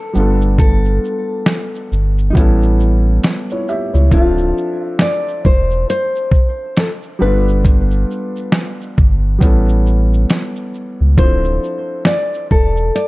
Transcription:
0.00 0.13 F3 medium
0.00 0.11 C4 medium
0.00 0.12 D4 medium
0.00 0.12 E4 medium
0.00 0.13 A4 medium
0.00 0.58 A4 medium
0.13 0.99 G1 loud
0.13 2.31 G3 medium
0.13 2.31 B3 medium
0.13 2.32 D4 medium
0.13 shaker soft
0.18 2.33 F4 medium
0.18 2.34 A4 medium
0.41 shaker medium
0.58 2.26 A4 loud
0.58 kick loud
0.58 closed hi-hat medium
0.58 shaker medium
0.85 shaker soft
1.05 shaker soft
1.46 snare loud
1.46 closed hi-hat medium
1.46 shaker medium
1.75 shaker soft
1.92 2.32 G1 medium
1.92 shaker soft
2.18 shaker soft
2.30 4.07 G3 medium
2.30 2.36 D#4 medium
2.35 3.19 A1 loud
2.35 4.08 B3 medium
2.35 4.08 C#4 medium
2.35 3.64 E4 medium
2.35 3.23 E4 medium
2.35 kick loud
2.35 closed hi-hat medium
2.35 shaker medium
2.39 3.24 A4 medium
2.62 shaker medium
2.80 shaker medium
3.24 snare loud
3.24 closed hi-hat medium
3.24 shaker medium
3.50 3.68 E4 medium
3.50 3.68 C#5 medium
3.50 shaker soft
3.68 3.94 G4 medium
3.68 3.93 E5 medium
3.68 shaker soft
3.94 4.11 C#2 loud
3.94 4.36 E4 medium
3.94 4.36 C#5 medium
3.94 shaker medium
4.10 4.53 D1 loud
4.10 7.16 F3 medium
4.10 7.17 C4 medium
4.10 7.17 D4 medium
4.10 5.03 F4 loud
4.10 kick loud
4.10 closed hi-hat medium
4.10 shaker medium
4.15 7.19 A4 medium
4.15 7.18 E5 medium
4.38 shaker soft
4.58 shaker soft
4.99 5.46 D5 loud
4.99 snare loud
4.99 closed hi-hat medium
4.99 shaker medium
5.28 shaker soft
5.45 5.86 E1 medium
5.45 5.89 C5 loud
5.45 kick medium
5.45 shaker soft
5.71 shaker soft
5.90 6.80 C5 loud
5.90 closed hi-hat medium
5.90 shaker medium
6.16 shaker soft
6.32 kick loud
6.32 shaker medium
6.77 6.90 A4 medium
6.77 snare loud
6.77 closed hi-hat medium
6.77 shaker medium
7.03 shaker soft
7.19 8.05 G1 loud
7.19 9.36 G3 medium
7.19 9.37 B3 medium
7.19 9.38 D4 medium
7.19 9.82 B4 medium
7.19 shaker soft
7.24 9.39 F4 medium
7.24 9.39 A4 medium
7.48 shaker medium
7.65 kick loud
7.65 closed hi-hat medium
7.65 shaker medium
7.91 shaker soft
8.11 shaker soft
8.36 shaker medium
8.52 snare loud
8.52 closed hi-hat medium
8.52 shaker medium
8.81 shaker soft
8.98 9.39 G1 medium
8.98 kick medium
8.98 shaker soft
9.38 10.26 A1 loud
9.38 11.13 G3 medium
9.38 11.14 B3 medium
9.38 11.14 C#4 medium
9.38 kick loud
9.38 closed hi-hat medium
9.38 shaker medium
9.44 11.15 E4 medium
9.44 11.16 A4 medium
9.69 shaker medium
9.87 shaker medium
10.13 shaker soft
10.30 snare loud
10.30 closed hi-hat medium
10.30 shaker medium
10.56 shaker soft
10.74 shaker soft
11.01 11.17 C#2 medium
11.17 11.59 D1 loud
11.17 13.08 F3 medium
11.17 13.08 C4 medium
11.17 13.08 D4 medium
11.17 12.06 C5 loud
11.17 kick loud
11.17 closed hi-hat medium
11.17 shaker medium
11.22 13.08 E4 medium
11.22 13.08 A4 medium
11.44 shaker soft
11.64 shaker soft
12.05 12.47 D5 loud
12.05 snare loud
12.05 closed hi-hat medium
12.05 shaker medium
12.34 shaker soft
12.51 12.92 E1 medium
12.51 12.92 A4 medium
12.51 kick medium
12.51 shaker soft
12.77 shaker soft
12.95 13.08 D5 medium
12.95 closed hi-hat medium
12.95 shaker medium

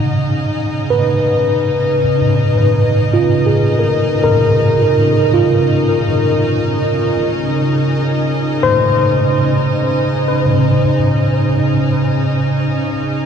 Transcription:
0.00 13.26 C#3 medium
0.00 13.26 C#4 medium
0.00 13.26 D#4 medium
0.00 13.26 D#5 medium
0.90 2.54 B4 medium
3.14 4.96 F4 soft
3.46 5.26 G#4 soft
3.79 4.23 A#4 soft
4.24 6.06 A#4 medium
5.34 7.16 F4 medium
8.63 10.44 C5 medium

